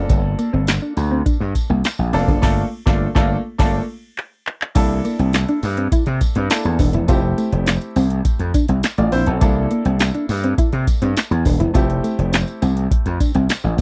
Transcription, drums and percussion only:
0.09 kick, closed hi-hat, tambourine
0.39 closed hi-hat, tambourine
0.67 snare, clap, closed hi-hat, tambourine
0.97 closed hi-hat, tambourine
1.26 kick, closed hi-hat, tambourine
1.55 kick, closed hi-hat, tambourine
1.84 snare, clap, closed hi-hat, tambourine
2.13 open hi-hat, tambourine
2.28 kick
2.42 kick, snare, crash
2.86 kick, snare
3.15 kick, snare
3.59 kick, snare, crash
4.18 clap
4.47 clap
4.62 clap
4.75 kick, closed hi-hat, crash, tambourine
5.05 closed hi-hat, tambourine
5.19 closed hi-hat
5.33 snare, clap, closed hi-hat, tambourine
5.48 closed hi-hat
5.63 open hi-hat, tambourine
5.77 closed hi-hat
5.92 kick, closed hi-hat, tambourine
6.06 closed hi-hat
6.21 kick, closed hi-hat, tambourine
6.35 closed hi-hat
6.50 snare, clap, closed hi-hat, tambourine
6.65 closed hi-hat
6.79 kick, open hi-hat, tambourine
6.93 closed hi-hat
7.08 kick, closed hi-hat, tambourine
7.38 closed hi-hat, tambourine
7.52 closed hi-hat
7.66 snare, clap, closed hi-hat, tambourine
7.81 closed hi-hat
7.96 open hi-hat, tambourine
8.10 closed hi-hat
8.25 kick, closed hi-hat, tambourine
8.39 closed hi-hat
8.54 kick, closed hi-hat, tambourine
8.68 closed hi-hat
8.83 snare, clap, closed hi-hat, tambourine
8.98 closed hi-hat
9.12 open hi-hat, tambourine
9.26 closed hi-hat
9.41 kick, closed hi-hat, tambourine
9.71 closed hi-hat
9.85 closed hi-hat
9.99 snare, clap, closed hi-hat, tambourine
10.14 closed hi-hat
10.29 open hi-hat, tambourine
10.44 closed hi-hat
10.58 kick, closed hi-hat, tambourine
10.73 closed hi-hat
10.87 kick, closed hi-hat, tambourine
11.02 closed hi-hat
11.17 snare, clap, closed hi-hat, tambourine
11.32 closed hi-hat
11.45 kick, open hi-hat, tambourine
11.60 closed hi-hat
11.74 kick, closed hi-hat, tambourine
11.90 closed hi-hat
12.04 closed hi-hat, tambourine
12.19 closed hi-hat
12.33 snare, clap, closed hi-hat, tambourine
12.48 closed hi-hat
12.62 closed hi-hat, tambourine
12.77 closed hi-hat
12.91 kick, closed hi-hat
13.06 closed hi-hat
13.20 kick, closed hi-hat, tambourine
13.35 closed hi-hat
13.49 snare, clap, closed hi-hat, tambourine

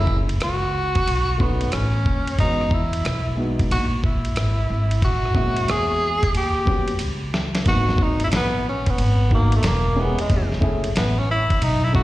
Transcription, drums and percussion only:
0.07 kick
0.29 ride
0.41 cross-stick, hi-hat pedal, ride
0.95 kick, ride
1.08 ride
1.40 kick
1.61 ride
1.72 cross-stick, hi-hat pedal, ride
2.06 kick
2.27 ride
2.39 kick, ride
2.61 cross-stick
2.71 kick
2.93 ride
3.05 cross-stick, hi-hat pedal, ride
3.59 kick, ride
3.71 ride
4.04 kick
4.25 ride
4.36 cross-stick, hi-hat pedal, ride
4.91 ride
5.02 kick, ride
5.25 cross-stick
5.35 kick, cross-stick
5.57 ride
5.68 cross-stick, hi-hat pedal, ride
6.23 kick, ride
6.35 ride
6.67 kick
6.88 ride
6.99 hi-hat pedal, ride
7.34 snare
7.55 snare, ride
7.66 kick, ride
7.89 snare
7.98 kick
8.20 ride
8.32 snare, hi-hat pedal, ride
8.86 kick, ride
8.98 ride
9.31 kick
9.52 ride
9.63 snare, hi-hat pedal, ride
10.19 ride
10.30 kick, ride
10.52 snare
10.62 kick
10.84 ride
10.96 snare, hi-hat pedal, ride
11.50 kick, ride
11.62 ride
11.95 kick

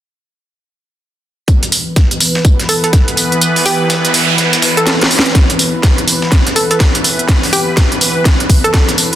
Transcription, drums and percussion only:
1.48 kick, closed hi-hat, tambourine
1.63 closed hi-hat
1.72 open hi-hat, tambourine
1.96 kick, snare, closed hi-hat, tambourine
2.11 closed hi-hat
2.20 open hi-hat, tambourine
2.35 snare
2.45 kick, closed hi-hat, tambourine
2.59 snare, closed hi-hat
2.69 open hi-hat, tambourine
2.84 closed hi-hat
2.93 kick, snare, closed hi-hat, tambourine
3.08 closed hi-hat
3.17 open hi-hat, tambourine
3.32 closed hi-hat
3.41 closed hi-hat, tambourine
3.56 snare, open hi-hat
3.66 open hi-hat, tambourine
3.90 snare, closed hi-hat, tambourine
4.05 closed hi-hat
4.14 open hi-hat, tambourine
4.38 snare, closed hi-hat, tambourine
4.53 snare, closed hi-hat, tambourine
4.62 snare, open hi-hat, tambourine
4.77 closed hi-hat
4.87 snare, closed hi-hat, tambourine
5.01 snare, closed hi-hat
5.11 open hi-hat, tambourine
5.19 snare
5.26 closed hi-hat
5.35 kick, snare, closed hi-hat, tambourine
5.50 closed hi-hat
5.59 open hi-hat, tambourine
5.83 kick, snare, closed hi-hat, tambourine
5.98 closed hi-hat
6.08 open hi-hat, tambourine
6.22 snare
6.32 kick, snare, closed hi-hat, tambourine
6.47 snare, closed hi-hat
6.56 open hi-hat, tambourine
6.71 closed hi-hat
6.80 kick, snare, closed hi-hat, tambourine
6.95 closed hi-hat
7.04 open hi-hat, tambourine
7.19 closed hi-hat
7.28 kick, snare, closed hi-hat, tambourine
7.43 snare, open hi-hat
7.53 open hi-hat, tambourine
7.77 kick, snare, closed hi-hat, tambourine
7.92 closed hi-hat
8.01 open hi-hat, tambourine
8.25 kick, snare, closed hi-hat, tambourine
8.40 closed hi-hat
8.49 kick, open hi-hat, tambourine
8.64 closed hi-hat
8.74 kick, snare, closed hi-hat, tambourine
8.88 snare, closed hi-hat
8.98 open hi-hat, tambourine

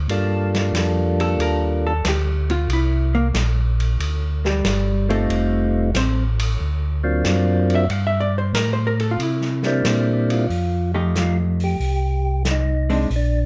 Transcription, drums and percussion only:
0.09 ride
0.54 snare, ride
0.74 snare, hi-hat pedal, ride
1.20 ride
1.40 ride
2.04 snare, hi-hat pedal, ride
2.50 ride
2.70 ride
3.34 snare, hi-hat pedal, ride
3.80 ride
4.00 ride
4.45 snare
4.64 snare, hi-hat pedal, ride
5.10 ride
5.30 ride
5.94 snare, hi-hat pedal, ride
6.40 ride
7.24 snare, hi-hat pedal, ride
7.70 ride
7.90 ride
8.54 snare, hi-hat pedal, ride
9.00 ride
9.20 ride
9.41 snare
9.63 snare
9.85 snare, hi-hat pedal, ride
10.30 ride
10.50 open hi-hat
11.15 snare, closed hi-hat
11.60 open hi-hat
11.80 open hi-hat
12.45 snare, closed hi-hat
12.90 open hi-hat
13.10 open hi-hat

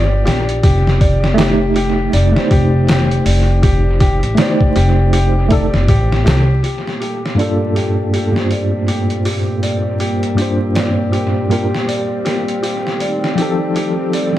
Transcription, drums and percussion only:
0.27 snare, open hi-hat
0.49 closed hi-hat
0.63 kick, open hi-hat
0.87 snare
1.01 kick, open hi-hat
1.24 snare
1.38 snare, open hi-hat
1.76 open hi-hat
2.13 open hi-hat
2.36 snare
2.51 kick, open hi-hat
2.88 snare, open hi-hat
3.11 closed hi-hat
3.26 open hi-hat
3.63 kick, open hi-hat
4.00 kick, open hi-hat
4.23 closed hi-hat
4.37 snare, open hi-hat
4.61 kick
4.76 open hi-hat
5.13 open hi-hat
5.51 kick, open hi-hat
5.74 snare
5.88 kick, open hi-hat
6.12 snare
6.27 snare, open hi-hat
6.64 open hi-hat
6.87 snare
7.02 open hi-hat
7.26 snare
7.39 open hi-hat
7.76 open hi-hat
8.14 open hi-hat
8.36 snare
8.51 open hi-hat
8.88 open hi-hat
9.10 closed hi-hat
9.25 open hi-hat
9.63 open hi-hat
10.00 open hi-hat
10.23 closed hi-hat
10.38 open hi-hat
10.75 snare, open hi-hat
11.13 open hi-hat
11.51 open hi-hat
11.74 snare
11.89 open hi-hat
12.26 snare, open hi-hat
12.48 closed hi-hat
12.64 open hi-hat
12.87 snare
13.00 open hi-hat
13.24 snare
13.38 open hi-hat
13.76 open hi-hat
14.13 open hi-hat

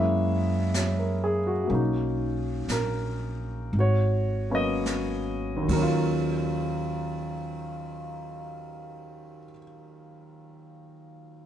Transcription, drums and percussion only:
0.74 snare, hi-hat pedal
1.69 brush sweep
2.69 snare, hi-hat pedal
3.73 brush sweep
4.86 snare, hi-hat pedal
5.69 kick, ride

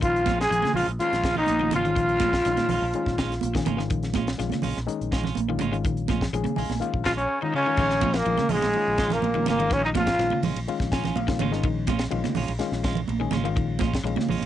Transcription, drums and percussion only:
0.01 kick, closed hi-hat, high conga
0.16 closed hi-hat
0.26 kick, snare, closed hi-hat, high conga
0.41 snare, closed hi-hat
0.50 closed hi-hat, high conga
0.62 snare, closed hi-hat, high conga
0.74 open hi-hat, low conga
0.89 closed hi-hat
0.99 closed hi-hat, high conga
1.13 snare, closed hi-hat
1.24 kick, snare, closed hi-hat
1.35 low conga
1.46 closed hi-hat, high conga
1.59 high conga
1.71 closed hi-hat, high conga, low conga
1.85 closed hi-hat
1.96 kick, closed hi-hat, high conga
2.09 closed hi-hat
2.20 kick, snare, closed hi-hat, high conga
2.33 kick, snare
2.45 snare, closed hi-hat, high conga
2.57 snare, closed hi-hat, high conga
2.69 open hi-hat, low conga
2.93 closed hi-hat, high conga
3.06 kick, snare
3.18 kick, snare, closed hi-hat
3.32 snare, closed hi-hat
3.41 closed hi-hat, high conga
3.55 kick, snare, closed hi-hat
3.66 closed hi-hat, high conga, low conga
3.79 snare
3.90 kick, closed hi-hat, high conga
4.03 snare, closed hi-hat
4.14 kick, snare, closed hi-hat, high conga
4.27 snare, closed hi-hat
4.38 snare, closed hi-hat, high conga
4.49 snare, closed hi-hat, high conga
4.62 open hi-hat, low conga
4.76 snare, closed hi-hat
4.86 closed hi-hat, high conga
5.01 closed hi-hat
5.12 kick, snare, closed hi-hat
5.24 snare, low conga
5.35 closed hi-hat, high conga
5.59 closed hi-hat, high conga, low conga
5.74 closed hi-hat
5.84 kick, closed hi-hat, high conga
5.97 closed hi-hat
6.08 kick, snare, closed hi-hat, high conga
6.21 kick, snare
6.33 closed hi-hat, high conga
6.44 closed hi-hat, high conga
6.56 open hi-hat, low conga
6.70 snare, high conga
6.81 closed hi-hat, high conga
6.94 kick
7.05 kick, snare, closed hi-hat
7.18 closed hi-hat
7.77 kick, snare, crash, high conga
7.90 snare
8.01 kick, ride bell, high conga
8.14 snare, ride bell
8.26 ride bell, high conga
8.38 snare, high conga
8.49 open hi-hat, low conga
8.62 snare, ride bell, high conga
8.73 ride bell, high conga
8.98 kick, snare, ride bell
9.10 snare, ride bell, low conga
9.22 ride bell, high conga
9.34 high conga
9.46 snare, ride bell, high conga, low conga
9.60 ride bell
9.71 kick, snare, ride bell, high conga
9.95 kick, snare, ride bell, high conga
10.07 kick, snare, ride bell
10.19 snare, ride bell, high conga
10.30 high conga
10.43 open hi-hat, low conga
10.56 ride bell
10.68 ride bell, high conga
10.80 kick, snare
10.92 kick, snare, ride bell
11.04 snare, ride bell, low conga
11.16 ride bell, high conga
11.28 kick, snare
11.39 ride bell, high conga, low conga
11.53 snare
11.63 kick, ride bell, high conga
11.87 kick, snare, ride bell, high conga
11.99 snare, ride bell
12.11 ride bell, high conga
12.24 snare, high conga
12.35 open hi-hat, low conga
12.48 ride bell
12.59 snare, ride bell, high conga
12.73 snare
12.84 kick, snare, ride bell
12.95 ride bell, low conga
13.08 ride bell, high conga
13.31 snare, ride bell, high conga, low conga
13.45 ride bell
13.55 kick, ride bell, high conga
13.79 kick, snare, ride bell, high conga
13.94 kick, snare, ride bell
14.04 ride bell, high conga
14.16 snare, high conga
14.29 open hi-hat, low conga
14.40 ride bell, high conga

